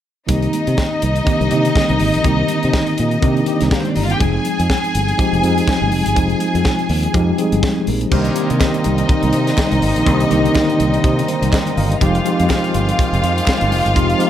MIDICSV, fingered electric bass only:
0, 0, Header, 1, 2, 480
1, 0, Start_track
1, 0, Key_signature, -3, "minor"
1, 0, Tempo, 488202
1, 284, Time_signature, 4, 2, 24, 8
1, 14059, End_track
2, 0, Start_track
2, 0, Title_t, "Fingered electric bass"
2, 0, Program_c, 0, 33
2, 287, Note_on_c, 0, 36, 91
2, 451, Note_off_c, 0, 36, 0
2, 664, Note_on_c, 0, 48, 83
2, 736, Note_off_c, 0, 48, 0
2, 1013, Note_on_c, 0, 36, 78
2, 1176, Note_off_c, 0, 36, 0
2, 1385, Note_on_c, 0, 36, 83
2, 1457, Note_off_c, 0, 36, 0
2, 1497, Note_on_c, 0, 48, 83
2, 1660, Note_off_c, 0, 48, 0
2, 1868, Note_on_c, 0, 36, 91
2, 1940, Note_off_c, 0, 36, 0
2, 1975, Note_on_c, 0, 32, 88
2, 2066, Note_off_c, 0, 32, 0
2, 2117, Note_on_c, 0, 34, 61
2, 2186, Note_off_c, 0, 34, 0
2, 2209, Note_on_c, 0, 36, 93
2, 2376, Note_off_c, 0, 36, 0
2, 2600, Note_on_c, 0, 48, 83
2, 2669, Note_off_c, 0, 48, 0
2, 2944, Note_on_c, 0, 46, 81
2, 3107, Note_off_c, 0, 46, 0
2, 3176, Note_on_c, 0, 48, 93
2, 3341, Note_off_c, 0, 48, 0
2, 3558, Note_on_c, 0, 36, 80
2, 3629, Note_off_c, 0, 36, 0
2, 3901, Note_on_c, 0, 31, 84
2, 4065, Note_off_c, 0, 31, 0
2, 4141, Note_on_c, 0, 29, 97
2, 4305, Note_off_c, 0, 29, 0
2, 4519, Note_on_c, 0, 41, 83
2, 4590, Note_off_c, 0, 41, 0
2, 4868, Note_on_c, 0, 31, 78
2, 5030, Note_off_c, 0, 31, 0
2, 5240, Note_on_c, 0, 29, 84
2, 5310, Note_off_c, 0, 29, 0
2, 5340, Note_on_c, 0, 41, 84
2, 5505, Note_off_c, 0, 41, 0
2, 5720, Note_on_c, 0, 31, 93
2, 5826, Note_off_c, 0, 31, 0
2, 5826, Note_on_c, 0, 29, 94
2, 5916, Note_off_c, 0, 29, 0
2, 5963, Note_on_c, 0, 31, 66
2, 6063, Note_off_c, 0, 31, 0
2, 6063, Note_on_c, 0, 29, 100
2, 6227, Note_off_c, 0, 29, 0
2, 6440, Note_on_c, 0, 41, 90
2, 6510, Note_off_c, 0, 41, 0
2, 6781, Note_on_c, 0, 39, 88
2, 6945, Note_off_c, 0, 39, 0
2, 7025, Note_on_c, 0, 41, 94
2, 7188, Note_off_c, 0, 41, 0
2, 7399, Note_on_c, 0, 31, 82
2, 7470, Note_off_c, 0, 31, 0
2, 7749, Note_on_c, 0, 34, 94
2, 7910, Note_off_c, 0, 34, 0
2, 7985, Note_on_c, 0, 36, 105
2, 8147, Note_off_c, 0, 36, 0
2, 8364, Note_on_c, 0, 48, 81
2, 8432, Note_off_c, 0, 48, 0
2, 8713, Note_on_c, 0, 36, 88
2, 8872, Note_off_c, 0, 36, 0
2, 9080, Note_on_c, 0, 36, 92
2, 9149, Note_off_c, 0, 36, 0
2, 9180, Note_on_c, 0, 48, 90
2, 9343, Note_off_c, 0, 48, 0
2, 9559, Note_on_c, 0, 36, 91
2, 9628, Note_off_c, 0, 36, 0
2, 9658, Note_on_c, 0, 32, 101
2, 9749, Note_off_c, 0, 32, 0
2, 9794, Note_on_c, 0, 34, 71
2, 9864, Note_off_c, 0, 34, 0
2, 9899, Note_on_c, 0, 36, 116
2, 10061, Note_off_c, 0, 36, 0
2, 10142, Note_on_c, 0, 36, 84
2, 10303, Note_off_c, 0, 36, 0
2, 10623, Note_on_c, 0, 36, 85
2, 10783, Note_off_c, 0, 36, 0
2, 10856, Note_on_c, 0, 48, 95
2, 11019, Note_off_c, 0, 48, 0
2, 11230, Note_on_c, 0, 36, 87
2, 11300, Note_off_c, 0, 36, 0
2, 11578, Note_on_c, 0, 31, 95
2, 11739, Note_off_c, 0, 31, 0
2, 11816, Note_on_c, 0, 29, 108
2, 11978, Note_off_c, 0, 29, 0
2, 12192, Note_on_c, 0, 41, 87
2, 12260, Note_off_c, 0, 41, 0
2, 12536, Note_on_c, 0, 31, 83
2, 12696, Note_off_c, 0, 31, 0
2, 12908, Note_on_c, 0, 29, 88
2, 12977, Note_off_c, 0, 29, 0
2, 13010, Note_on_c, 0, 41, 99
2, 13172, Note_off_c, 0, 41, 0
2, 13391, Note_on_c, 0, 31, 96
2, 13499, Note_off_c, 0, 31, 0
2, 13499, Note_on_c, 0, 29, 97
2, 13585, Note_off_c, 0, 29, 0
2, 13627, Note_on_c, 0, 31, 79
2, 13732, Note_off_c, 0, 31, 0
2, 13732, Note_on_c, 0, 29, 94
2, 13892, Note_off_c, 0, 29, 0
2, 14059, End_track
0, 0, End_of_file